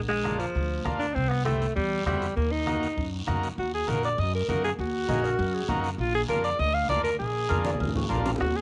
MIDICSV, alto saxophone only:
0, 0, Header, 1, 2, 480
1, 0, Start_track
1, 0, Key_signature, -6, "minor"
1, 0, Tempo, 301963
1, 1842, Time_signature, 4, 2, 24, 8
1, 13688, End_track
2, 0, Start_track
2, 0, Title_t, "Alto saxophone"
2, 0, Program_c, 0, 65
2, 135, Note_on_c, 0, 56, 93
2, 611, Note_on_c, 0, 53, 80
2, 635, Note_off_c, 0, 56, 0
2, 1347, Note_off_c, 0, 53, 0
2, 1576, Note_on_c, 0, 62, 86
2, 1814, Note_on_c, 0, 60, 91
2, 1838, Note_off_c, 0, 62, 0
2, 2055, Note_on_c, 0, 59, 89
2, 2079, Note_off_c, 0, 60, 0
2, 2289, Note_off_c, 0, 59, 0
2, 2299, Note_on_c, 0, 57, 84
2, 2757, Note_off_c, 0, 57, 0
2, 2789, Note_on_c, 0, 55, 99
2, 3243, Note_off_c, 0, 55, 0
2, 3274, Note_on_c, 0, 55, 88
2, 3726, Note_off_c, 0, 55, 0
2, 3752, Note_on_c, 0, 58, 88
2, 3999, Note_on_c, 0, 63, 103
2, 4022, Note_off_c, 0, 58, 0
2, 4962, Note_off_c, 0, 63, 0
2, 5704, Note_on_c, 0, 66, 78
2, 5919, Note_off_c, 0, 66, 0
2, 5948, Note_on_c, 0, 68, 87
2, 6190, Note_on_c, 0, 70, 81
2, 6214, Note_off_c, 0, 68, 0
2, 6418, Note_off_c, 0, 70, 0
2, 6434, Note_on_c, 0, 74, 88
2, 6670, Note_on_c, 0, 75, 89
2, 6694, Note_off_c, 0, 74, 0
2, 6898, Note_off_c, 0, 75, 0
2, 6914, Note_on_c, 0, 70, 77
2, 7124, Note_off_c, 0, 70, 0
2, 7143, Note_on_c, 0, 70, 80
2, 7358, Note_off_c, 0, 70, 0
2, 7380, Note_on_c, 0, 68, 84
2, 7484, Note_off_c, 0, 68, 0
2, 7635, Note_on_c, 0, 66, 97
2, 9235, Note_off_c, 0, 66, 0
2, 9526, Note_on_c, 0, 65, 93
2, 9748, Note_off_c, 0, 65, 0
2, 9773, Note_on_c, 0, 68, 98
2, 9879, Note_off_c, 0, 68, 0
2, 10006, Note_on_c, 0, 70, 91
2, 10228, Note_off_c, 0, 70, 0
2, 10242, Note_on_c, 0, 74, 98
2, 10484, Note_on_c, 0, 75, 115
2, 10508, Note_off_c, 0, 74, 0
2, 10716, Note_on_c, 0, 77, 102
2, 10740, Note_off_c, 0, 75, 0
2, 10952, Note_off_c, 0, 77, 0
2, 10961, Note_on_c, 0, 74, 105
2, 11176, Note_off_c, 0, 74, 0
2, 11186, Note_on_c, 0, 70, 89
2, 11417, Note_off_c, 0, 70, 0
2, 11429, Note_on_c, 0, 68, 89
2, 12623, Note_off_c, 0, 68, 0
2, 13355, Note_on_c, 0, 66, 88
2, 13610, Note_on_c, 0, 68, 86
2, 13634, Note_off_c, 0, 66, 0
2, 13688, Note_off_c, 0, 68, 0
2, 13688, End_track
0, 0, End_of_file